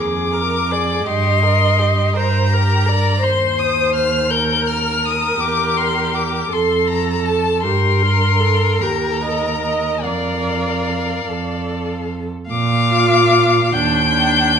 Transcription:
Already playing: F2 G#4
0.00 D6
0.32 A#4
0.71 G#4 D5
1.06 G2 G4 D#5 C6
1.42 A#4
1.79 G4
2.14 G2 A#4 C5 A#5
2.50 G4 A#4
2.86 A#4 D5
3.21 D#2 C5 C6
3.59 D#6
3.95 F6
4.30 A#4 G6
4.67 F6
5.05 D#6
5.39 E2 G4 D6
5.77 C6
6.14 D6
6.52 F2 A4 C6
6.87 A#5
7.26 A5
7.63 G2 G4 A#4 C6
8.02 A#4
8.40 A4
8.80 D#2 G4 A#5
9.23 D#5
9.63 D#5
10.03 F2 A#4 D5 F5
11.28 F2 A4
12.50 A#2 F5 D6
12.92 F4
13.73 D#2 D4 G5 G6
14.12 D4

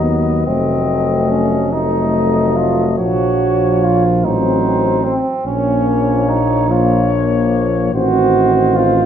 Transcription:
Already playing: D#2 F#3 B3 D#5
0.04 B3
0.46 F1 F#3 A3 C4 D#5
1.30 C#4
1.71 F#3 A3 D#4 D#5
2.57 F4
2.98 A#1 F3 A#3 F#4 C#5
3.84 F4
4.22 A1 F#3 C4 D#4 C5
5.04 C4
5.44 A#1 F3 A#3 C#4 C#5
6.29 D#4
6.69 F3 A#3 F4 C#5
7.92 A1 D#3 C4 F#4 C5
8.76 F4

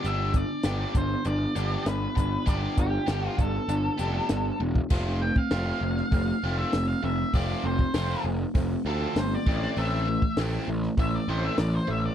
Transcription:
0.03 G1 B3 D4 G4 E5, closed hi-hat
0.33 B3 D4 D5, kick, closed hi-hat
0.63 G1 B3 D4 G4, snare, closed hi-hat
0.94 G1 B3 D4 C5, kick, closed hi-hat
1.25 G1 B3 D4 D5, closed hi-hat
1.55 G1 B3 D4 G4, closed hi-hat
1.84 G1 B3 D4 B4, snare, closed hi-hat
2.15 G1 B3 D4, kick, closed hi-hat
2.46 G1 B3 D4 G4 D5, kick, closed hi-hat
2.77 G1 B3 D4 G4, kick, closed hi-hat
3.07 G1 B3 D4 G4, snare, closed hi-hat
3.27 F4
3.38 G1 B3 D4 A4, kick, closed hi-hat
3.68 G1 B3 D4, closed hi-hat
3.98 F1 B3 D4 G4, closed hi-hat
4.29 G1 B3 D4, snare, closed hi-hat
4.60 E1 B3 D4, high tom
4.75 kick
4.90 F1 A3 C4 F4, kick, crash
5.22 A3 C4 G5
5.36 F5, kick
5.50 F1 A3 C4 F4, snare, open hi-hat
5.81 F1 A3 C4
5.97 snare
6.11 F1 A3 C4, kick, open hi-hat
6.43 F1 A3 C4 F4
6.59 E5
6.73 F1 A3 C4, snare, open hi-hat
6.88 F5
7.03 F1 A3 C4 E5
7.33 F1 A3 C4 F4 D5, kick, open hi-hat
7.64 F1 A3 C4 C5
7.79 kick
7.94 F1 A3 C4 F4, snare, open hi-hat
8.24 F1 A3 C4
8.55 F1 A3 C4, kick, open hi-hat
8.85 D2 A3 C4 F4 A4
9.16 G1 A3 C4 C5, snare, open hi-hat
9.34 D5
9.46 A1 E3 A3 C4, kick
9.62 snare
9.76 A1 E3 A3 C4 E5, open hi-hat
10.08 E3 A3
10.22 kick
10.37 A1 E3 A3 C4, snare, open hi-hat
10.68 A1 E3 A3
10.83 snare
10.97 A1 E3 A3 E5, kick, open hi-hat
11.15 D5
11.28 A1 E3 A3 C4 C5
11.45 E5
11.58 A1 E3 A3 D5, snare, open hi-hat
11.74 C5
11.88 A1 E3 A3 E5
12.06 D5

